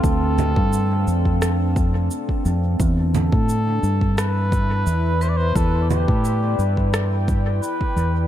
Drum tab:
SH |x-x-x-x-x-x-x-x-|x-x-x-x-x-x-x-x-|x-x-x-x-x-x-x-x-|
SD |--------r-------|--------r-------|--------r-------|
CG |--O-------------|--O-------------|--O-------------|
BD |o--o---o--o--o--|o--o---o--o-----|o--o---o--o--o--|